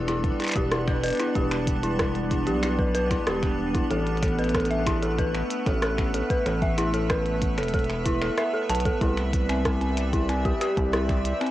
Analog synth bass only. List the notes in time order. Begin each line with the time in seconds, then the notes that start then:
Already playing: E1
0.56 E1
1.35 E1
2.47 B1
3.27 E1
3.91 A1
5.66 A1
6.46 A1
7.58 E1
8.69 B1
9.01 C2
10.77 C2